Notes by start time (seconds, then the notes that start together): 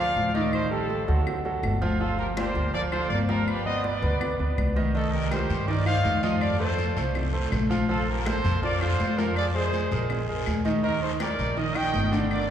Already playing: D2 F3 F4
0.00 D5 F5
0.16 A1, high conga
0.34 D#3 D#4 A#4 D5 D#5, high conga
0.53 A4 C5, high conga, claves
0.71 G3 F4 G4 A4, high conga
0.90 high conga
1.08 D2 F#3 F#4 A4, high conga
1.27 high conga, low conga, claves
1.45 F#3 F#4 A4, high conga
1.63 G1, high conga, claves
1.82 F3 F4 F5, high conga
2.00 F3 F4 A4 F5, high conga
2.19 G4 A#4, high conga
2.37 A#3 G4 A#4 C5 D5, high conga, claves
2.55 D2, high conga
2.73 F3 F4 A#4 D5 F5, high conga
2.92 F3 F4 A4 C5 F5, high conga, claves
3.10 G1 A#4 D5, high conga
3.28 F3 F4 G4 A#4 F5, high conga
3.47 G4 B4, high conga, claves
3.66 B3 B4 C5 D5 D#5, high conga
3.84 B4 D5, high conga
4.02 D2 B3 B4 D5, high conga
4.21 high conga, low conga, claves
4.39 D2 B3 B4 D5, high conga
4.58 C2, high conga, claves
4.76 D#3 D#4 D#5, high conga
4.95 D#3 D#4 A4 D#5, high conga, long guiro
5.13 G4 A#4, high conga
5.31 G3 G4 A#4 C5, high conga, short guiro, claves
5.50 G2, high conga, short guiro
5.68 D#3 D#4 A#4 D5 D#5, high conga, long guiro
5.86 D#3 D#4 C5 D5 F5, high conga, claves
6.05 F2, high conga, short guiro
6.23 F3 F4 C5 D#5 F5, high conga, short guiro
6.41 A4 D5, high conga, long guiro, claves
6.60 A3 A4 C5, high conga
6.78 high conga, short guiro
6.97 C2 A3 A4 C5, high conga, short guiro
7.15 high conga, low conga, long guiro, claves
7.33 A3 A4 C5, high conga
7.52 A#1, high conga, short guiro, claves
7.70 F3 F4 F5, high conga, short guiro
7.89 F3 F4 A4 F5, high conga, long guiro
8.08 G4 A#4, high conga
8.26 A#3 A4 C5, high conga, short guiro, claves
8.44 F2, high conga, short guiro
8.63 F3 F4 A#4 D5 F5, high conga, long guiro
8.81 F3 F4 A4 C5 F5, high conga, claves
9.00 F2, high conga, short guiro
9.18 F3 F4 G4 A#4 F5, high conga, short guiro
9.36 G#4 D5, high conga, long guiro, claves
9.55 G#3 G#4 C5, high conga
9.73 high conga, short guiro
9.92 A#1 G#3 G#4 A#4, high conga, short guiro
10.10 high conga, low conga, long guiro, claves
10.28 G#3 G#4 A#4, high conga
10.46 D#2, high conga, short guiro, claves
10.65 D#3 D#4 D#5, high conga, short guiro
10.83 D#3 D#4 G4 A#4 D#5, high conga, long guiro
11.02 A4 C5, high conga
11.20 G3 G4 A#4 D5, high conga, short guiro, claves
11.39 A#1, high conga, short guiro
11.57 D#3 D#4 A#4 D#5, high conga, long guiro
11.75 D#3 D#4 D#5 G5, high conga, claves
11.94 G1, high conga, short guiro
12.12 D3 D4 D5, high conga, short guiro
12.31 A#4 D5, high conga, long guiro, claves